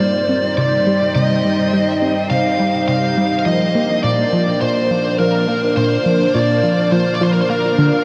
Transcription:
0, 0, Header, 1, 4, 480
1, 0, Start_track
1, 0, Key_signature, -2, "major"
1, 0, Tempo, 576923
1, 961, Time_signature, 4, 2, 24, 8
1, 6691, End_track
2, 0, Start_track
2, 0, Title_t, "Lead electric guitar"
2, 0, Program_c, 0, 29
2, 0, Note_on_c, 0, 74, 87
2, 468, Note_off_c, 0, 74, 0
2, 478, Note_on_c, 0, 74, 88
2, 955, Note_off_c, 0, 74, 0
2, 958, Note_on_c, 0, 75, 97
2, 1913, Note_off_c, 0, 75, 0
2, 1916, Note_on_c, 0, 77, 98
2, 2388, Note_off_c, 0, 77, 0
2, 2398, Note_on_c, 0, 77, 92
2, 2811, Note_off_c, 0, 77, 0
2, 2821, Note_on_c, 0, 77, 82
2, 2871, Note_off_c, 0, 77, 0
2, 2874, Note_on_c, 0, 75, 97
2, 3354, Note_off_c, 0, 75, 0
2, 3357, Note_on_c, 0, 74, 97
2, 3836, Note_on_c, 0, 72, 93
2, 3853, Note_off_c, 0, 74, 0
2, 4285, Note_off_c, 0, 72, 0
2, 4318, Note_on_c, 0, 70, 86
2, 4794, Note_off_c, 0, 70, 0
2, 4797, Note_on_c, 0, 72, 93
2, 5277, Note_on_c, 0, 74, 95
2, 5293, Note_off_c, 0, 72, 0
2, 5757, Note_on_c, 0, 72, 89
2, 5773, Note_off_c, 0, 74, 0
2, 5940, Note_on_c, 0, 74, 77
2, 5941, Note_off_c, 0, 72, 0
2, 6015, Note_off_c, 0, 74, 0
2, 6017, Note_on_c, 0, 72, 76
2, 6091, Note_off_c, 0, 72, 0
2, 6095, Note_on_c, 0, 70, 73
2, 6167, Note_off_c, 0, 70, 0
2, 6170, Note_on_c, 0, 72, 71
2, 6237, Note_off_c, 0, 72, 0
2, 6240, Note_on_c, 0, 70, 85
2, 6691, Note_off_c, 0, 70, 0
2, 6691, End_track
3, 0, Start_track
3, 0, Title_t, "String machine"
3, 0, Program_c, 1, 50
3, 0, Note_on_c, 1, 55, 90
3, 0, Note_on_c, 1, 58, 83
3, 0, Note_on_c, 1, 63, 77
3, 0, Note_on_c, 1, 65, 92
3, 0, Note_on_c, 1, 72, 80
3, 39, Note_on_c, 1, 79, 81
3, 230, Note_off_c, 1, 65, 0
3, 577, Note_off_c, 1, 58, 0
3, 2880, Note_off_c, 1, 55, 0
3, 2881, Note_on_c, 1, 58, 92
3, 2882, Note_off_c, 1, 63, 0
3, 3164, Note_on_c, 1, 62, 81
3, 3609, Note_on_c, 1, 77, 80
3, 4419, Note_off_c, 1, 79, 0
3, 6691, Note_off_c, 1, 58, 0
3, 6691, Note_off_c, 1, 62, 0
3, 6691, Note_off_c, 1, 72, 0
3, 6691, Note_off_c, 1, 77, 0
3, 6691, End_track
4, 0, Start_track
4, 0, Title_t, "Synth arpeggio sound"
4, 0, Program_c, 2, 84
4, 0, Note_on_c, 2, 55, 79
4, 229, Note_off_c, 2, 55, 0
4, 243, Note_on_c, 2, 60, 70
4, 345, Note_off_c, 2, 60, 0
4, 481, Note_on_c, 2, 48, 72
4, 653, Note_off_c, 2, 48, 0
4, 721, Note_on_c, 2, 55, 71
4, 892, Note_off_c, 2, 55, 0
4, 961, Note_on_c, 2, 48, 75
4, 1189, Note_off_c, 2, 48, 0
4, 1202, Note_on_c, 2, 55, 71
4, 1429, Note_off_c, 2, 55, 0
4, 1443, Note_on_c, 2, 55, 67
4, 1670, Note_off_c, 2, 55, 0
4, 1681, Note_on_c, 2, 60, 68
4, 1784, Note_off_c, 2, 60, 0
4, 1921, Note_on_c, 2, 48, 81
4, 2093, Note_off_c, 2, 48, 0
4, 2161, Note_on_c, 2, 55, 69
4, 2332, Note_off_c, 2, 55, 0
4, 2401, Note_on_c, 2, 48, 72
4, 2629, Note_off_c, 2, 48, 0
4, 2640, Note_on_c, 2, 55, 73
4, 2869, Note_off_c, 2, 55, 0
4, 2880, Note_on_c, 2, 53, 75
4, 3108, Note_off_c, 2, 53, 0
4, 3120, Note_on_c, 2, 58, 71
4, 3223, Note_off_c, 2, 58, 0
4, 3360, Note_on_c, 2, 46, 71
4, 3532, Note_off_c, 2, 46, 0
4, 3602, Note_on_c, 2, 53, 72
4, 3773, Note_off_c, 2, 53, 0
4, 3842, Note_on_c, 2, 46, 76
4, 4070, Note_off_c, 2, 46, 0
4, 4084, Note_on_c, 2, 53, 73
4, 4310, Note_off_c, 2, 53, 0
4, 4323, Note_on_c, 2, 53, 71
4, 4550, Note_off_c, 2, 53, 0
4, 4560, Note_on_c, 2, 58, 75
4, 4663, Note_off_c, 2, 58, 0
4, 4801, Note_on_c, 2, 46, 82
4, 4973, Note_off_c, 2, 46, 0
4, 5041, Note_on_c, 2, 53, 73
4, 5212, Note_off_c, 2, 53, 0
4, 5281, Note_on_c, 2, 46, 69
4, 5509, Note_off_c, 2, 46, 0
4, 5519, Note_on_c, 2, 53, 73
4, 5748, Note_off_c, 2, 53, 0
4, 5759, Note_on_c, 2, 53, 76
4, 5988, Note_off_c, 2, 53, 0
4, 5999, Note_on_c, 2, 53, 95
4, 6172, Note_off_c, 2, 53, 0
4, 6239, Note_on_c, 2, 58, 72
4, 6412, Note_off_c, 2, 58, 0
4, 6478, Note_on_c, 2, 50, 99
4, 6582, Note_off_c, 2, 50, 0
4, 6691, End_track
0, 0, End_of_file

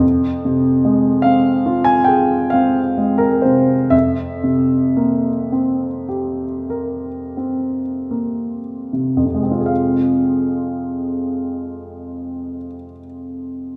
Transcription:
0, 0, Header, 1, 2, 480
1, 0, Start_track
1, 0, Key_signature, -4, "minor"
1, 0, Tempo, 813008
1, 14, Time_signature, 9, 3, 24, 8
1, 974, Tempo, 865801
1, 1454, Tempo, 927357
1, 1934, Tempo, 985222
1, 2414, Tempo, 1088929
1, 2894, Tempo, 1176471
1, 3374, Tempo, 1405152
1, 3854, Tempo, 1595745
1, 4334, Tempo, 1324503
1, 5809, End_track
2, 0, Start_track
2, 0, Title_t, "Grand piano"
2, 0, Program_c, 0, 0
2, 0, Control_c, 0, 64, 127
2, 0, Note_on_c, 0, 41, 52
2, 25, Control_c, 0, 64, 0
2, 128, Control_c, 0, 64, 127
2, 265, Note_on_c, 0, 48, 39
2, 500, Note_on_c, 0, 56, 38
2, 645, Note_off_c, 0, 48, 0
2, 721, Note_on_c, 0, 77, 66
2, 741, Note_on_c, 0, 60, 40
2, 877, Note_off_c, 0, 56, 0
2, 980, Note_on_c, 0, 65, 41
2, 1082, Note_on_c, 0, 80, 73
2, 1084, Note_off_c, 0, 77, 0
2, 1117, Note_off_c, 0, 60, 0
2, 1193, Note_on_c, 0, 79, 66
2, 1206, Note_off_c, 0, 80, 0
2, 1213, Note_on_c, 0, 68, 41
2, 1359, Note_off_c, 0, 65, 0
2, 1445, Note_off_c, 0, 79, 0
2, 1446, Note_on_c, 0, 77, 62
2, 1464, Note_on_c, 0, 60, 38
2, 1595, Note_off_c, 0, 68, 0
2, 1693, Note_on_c, 0, 56, 38
2, 1797, Note_on_c, 0, 70, 57
2, 1807, Note_off_c, 0, 77, 0
2, 1840, Note_off_c, 0, 60, 0
2, 1922, Note_on_c, 0, 72, 48
2, 1927, Note_off_c, 0, 70, 0
2, 1939, Note_on_c, 0, 48, 34
2, 2076, Note_off_c, 0, 56, 0
2, 2140, Note_off_c, 0, 41, 0
2, 2158, Note_on_c, 0, 76, 65
2, 2162, Note_on_c, 0, 41, 46
2, 2164, Note_off_c, 0, 72, 0
2, 2172, Note_off_c, 0, 48, 0
2, 2181, Control_c, 0, 64, 0
2, 2273, Control_c, 0, 64, 127
2, 2418, Note_on_c, 0, 48, 33
2, 2651, Note_on_c, 0, 58, 36
2, 2797, Note_off_c, 0, 48, 0
2, 2896, Note_on_c, 0, 60, 36
2, 3034, Note_off_c, 0, 58, 0
2, 3126, Note_on_c, 0, 67, 35
2, 3273, Note_off_c, 0, 60, 0
2, 3376, Note_on_c, 0, 70, 35
2, 3507, Note_off_c, 0, 67, 0
2, 3606, Note_on_c, 0, 60, 30
2, 3750, Note_off_c, 0, 70, 0
2, 3857, Note_on_c, 0, 58, 29
2, 4001, Note_off_c, 0, 60, 0
2, 4098, Note_off_c, 0, 76, 0
2, 4104, Note_on_c, 0, 48, 28
2, 4171, Note_off_c, 0, 41, 0
2, 4176, Note_on_c, 0, 41, 39
2, 4198, Note_off_c, 0, 48, 0
2, 4202, Note_on_c, 0, 48, 32
2, 4229, Note_on_c, 0, 56, 31
2, 4249, Note_off_c, 0, 58, 0
2, 4254, Note_on_c, 0, 60, 33
2, 4280, Note_on_c, 0, 65, 30
2, 4307, Note_on_c, 0, 68, 33
2, 4324, Note_on_c, 0, 77, 38
2, 4343, Control_c, 0, 64, 0
2, 4425, Control_c, 0, 64, 127
2, 5375, Note_off_c, 0, 41, 0
2, 5407, Note_off_c, 0, 48, 0
2, 5439, Note_off_c, 0, 56, 0
2, 5469, Note_off_c, 0, 60, 0
2, 5500, Note_off_c, 0, 65, 0
2, 5532, Note_off_c, 0, 68, 0
2, 5553, Note_off_c, 0, 77, 0
2, 5809, End_track
0, 0, End_of_file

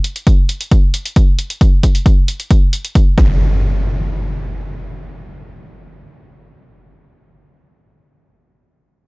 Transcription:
0, 0, Header, 1, 3, 480
1, 0, Start_track
1, 0, Tempo, 447761
1, 1726, Time_signature, 4, 2, 24, 8
1, 9728, End_track
2, 0, Start_track
2, 0, Title_t, "Impact"
2, 0, Program_c, 0, 103
2, 3406, Note_on_c, 0, 60, 65
2, 8211, Note_off_c, 0, 60, 0
2, 9728, End_track
3, 0, Start_track
3, 0, Title_t, "Drums"
3, 46, Note_on_c, 9, 42, 86
3, 153, Note_off_c, 9, 42, 0
3, 170, Note_on_c, 9, 42, 62
3, 277, Note_off_c, 9, 42, 0
3, 287, Note_on_c, 9, 36, 113
3, 287, Note_on_c, 9, 42, 63
3, 394, Note_off_c, 9, 36, 0
3, 394, Note_off_c, 9, 42, 0
3, 526, Note_on_c, 9, 42, 88
3, 633, Note_off_c, 9, 42, 0
3, 650, Note_on_c, 9, 42, 62
3, 757, Note_off_c, 9, 42, 0
3, 766, Note_on_c, 9, 36, 106
3, 766, Note_on_c, 9, 42, 62
3, 873, Note_off_c, 9, 36, 0
3, 873, Note_off_c, 9, 42, 0
3, 1006, Note_on_c, 9, 42, 93
3, 1113, Note_off_c, 9, 42, 0
3, 1131, Note_on_c, 9, 42, 63
3, 1238, Note_off_c, 9, 42, 0
3, 1246, Note_on_c, 9, 36, 108
3, 1246, Note_on_c, 9, 42, 65
3, 1353, Note_off_c, 9, 36, 0
3, 1353, Note_off_c, 9, 42, 0
3, 1485, Note_on_c, 9, 42, 88
3, 1593, Note_off_c, 9, 42, 0
3, 1609, Note_on_c, 9, 42, 64
3, 1717, Note_off_c, 9, 42, 0
3, 1726, Note_on_c, 9, 36, 115
3, 1727, Note_on_c, 9, 42, 62
3, 1833, Note_off_c, 9, 36, 0
3, 1834, Note_off_c, 9, 42, 0
3, 1966, Note_on_c, 9, 36, 60
3, 1966, Note_on_c, 9, 42, 90
3, 2073, Note_off_c, 9, 36, 0
3, 2073, Note_off_c, 9, 42, 0
3, 2089, Note_on_c, 9, 42, 65
3, 2196, Note_off_c, 9, 42, 0
3, 2206, Note_on_c, 9, 36, 116
3, 2206, Note_on_c, 9, 42, 62
3, 2313, Note_off_c, 9, 36, 0
3, 2313, Note_off_c, 9, 42, 0
3, 2446, Note_on_c, 9, 42, 95
3, 2553, Note_off_c, 9, 42, 0
3, 2569, Note_on_c, 9, 42, 63
3, 2677, Note_off_c, 9, 42, 0
3, 2686, Note_on_c, 9, 36, 114
3, 2686, Note_on_c, 9, 42, 64
3, 2793, Note_off_c, 9, 42, 0
3, 2794, Note_off_c, 9, 36, 0
3, 2926, Note_on_c, 9, 42, 98
3, 3034, Note_off_c, 9, 42, 0
3, 3051, Note_on_c, 9, 42, 66
3, 3158, Note_off_c, 9, 42, 0
3, 3166, Note_on_c, 9, 36, 108
3, 3166, Note_on_c, 9, 42, 66
3, 3273, Note_off_c, 9, 36, 0
3, 3273, Note_off_c, 9, 42, 0
3, 3406, Note_on_c, 9, 36, 107
3, 3513, Note_off_c, 9, 36, 0
3, 9728, End_track
0, 0, End_of_file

